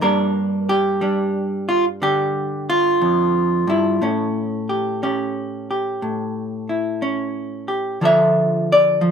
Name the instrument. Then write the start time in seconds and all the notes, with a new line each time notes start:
hollow-body jazz guitar
0.01 G2 G3 A#3 D4 A#4
0.69 G4
1.01 G3 D4
1.69 F4
2.02 D3 G4
2.70 F4
3.01 F2
3.67 G2 E4
4.02 A2 C#4
4.69 G4
5.03 C#4 G4
5.71 G4
6.02 A2
6.69 E4
7.02 C#4
7.68 G4
8.01 D3 F3 F4 A4 E5
8.72 D5
9.01 F3